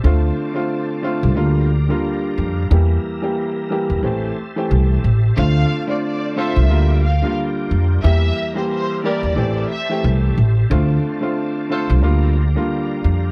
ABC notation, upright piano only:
X:1
M:4/4
L:1/16
Q:"Swing 16ths" 1/4=90
K:Dm
V:1 name="Upright piano"
[D,A,CF]3 [D,A,CF]3 [D,A,CF]2 [D,G,B,F]2 z [D,G,B,F]4- [D,G,B,F] | [E,G,B,G]3 [E,G,B,G]3 [E,G,B,G]2 [E,A,CG]2 z [E,A,CG]3 z2 | [D,A,CF]3 [D,A,CF]3 [D,A,CF]2 [D,G,B,F]2 z [D,G,B,F]4- [D,G,B,F] | [E,G,B,G]3 [E,G,B,G]3 [E,G,B,G]2 [E,A,CG]2 z [E,A,CG]3 z2 |
[D,A,CF]3 [D,A,CF]3 [D,A,CF]2 [D,G,B,F]2 z [D,G,B,F]4- [D,G,B,F] |]